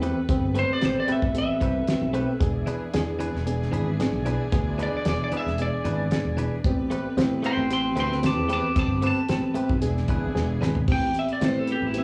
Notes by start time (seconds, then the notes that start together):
Already playing: E2 B3 C4 G4 A4 B4
0.02 A3 C4 G4 B4, closed hi-hat
0.29 G1 B3 C4 G4, kick, closed hi-hat
0.55 A3 C4 G4 B4, closed hi-hat
0.59 C5
0.70 D5, muted fretless electric bass stroke
0.81 A1 B3 C4 G4, snare, closed hi-hat
0.85 C5
1.00 D5
1.07 A3 C4 G4 B4, muted fretless electric bass stroke, closed hi-hat
1.12 E5
1.22 A1, kick
1.34 B3 C4 G4, closed hi-hat
1.38 E5
1.60 C2 A3 C4 G4 B4, kick, closed hi-hat
1.87 B3 C4 G4, muted fretless electric bass stroke, snare, closed hi-hat
2.02 B1
2.13 A3 C4 G4 B4, closed hi-hat
2.40 E1 B3 D4 E4 G#4, kick, closed hi-hat
2.66 E3 D4 G#4 B4, closed hi-hat
2.94 E2 B3 D4 G#4, snare, closed hi-hat
3.19 E3 D4 G#4 B4, closed hi-hat
3.34 E1, snare
3.46 B3 D4 G#4, closed hi-hat
3.62 snare
3.72 G#1 E3 D4 G#4 B4, closed hi-hat
3.99 B3 D4 G#4, snare, closed hi-hat
4.13 B1
4.25 E3 D4 G#4 B4, closed hi-hat
4.52 D2 B3 D4 G#4, kick, closed hi-hat
4.78 E3 D4 G#4 B4, closed hi-hat
4.83 D5
4.93 D5, muted fretless electric bass stroke
5.05 E1 B3 D4 G#4 D5, snare, closed hi-hat
5.24 D5
5.32 E3 D4 G#4 B4, muted fretless electric bass stroke, closed hi-hat
5.37 E5
5.46 E1, snare
5.58 B3 D4 G#4 D5, closed hi-hat
5.84 G#1 E3 D4 G#4 B4, closed hi-hat
6.11 B3 D4 G#4, muted fretless electric bass stroke, snare, closed hi-hat
6.25 E1
6.37 E3 D4 G#4 B4, closed hi-hat
6.64 A1 B3 C4 G4 B4, kick, closed hi-hat
6.90 A3 C4 G4 B4, closed hi-hat
7.17 A2 B3 C4 G4, snare, closed hi-hat
7.43 A3 C4 G4 B4 G5 C6, closed hi-hat
7.57 A1
7.70 B3 C4 G4 G5 C6, closed hi-hat
7.96 D2 A3 C4 G4 B4 G5, closed hi-hat
8.00 C6
8.12 snare
8.23 B3 C4 G4 A5 D6, snare, closed hi-hat
8.38 E2
8.49 A3 C4 G4 B4, closed hi-hat
8.53 A5 D6
8.76 G1 B3 C4 G4 A5 D6, kick, closed hi-hat
9.02 A3 C4 G4 B4, closed hi-hat
9.07 A5
9.17 muted fretless electric bass stroke
9.29 A1 B3 C4 G4, snare, closed hi-hat
9.54 A3 C4 G4 B4, muted fretless electric bass stroke, closed hi-hat
9.69 B1, kick
9.82 E1 B3 D4 E4 G#4, closed hi-hat
9.97 snare
10.08 D1 E3 D4 G#4 B4, kick, closed hi-hat
10.35 E1 B3 D4 G#4, snare
10.61 G#1 E3 D4 G#4 B4, snare
10.75 floor tom
10.87 A1 B3 C4 G4 B4, kick, crash
10.92 G5
11.14 closed hi-hat
11.19 E5
11.29 closed hi-hat
11.33 D5
11.41 A2 B3 C4 G4, snare, closed hi-hat
11.45 C5
11.59 A4
11.67 closed hi-hat
11.72 G4
11.82 A1
11.86 E4
11.94 B3 C4 G4, closed hi-hat
11.98 E4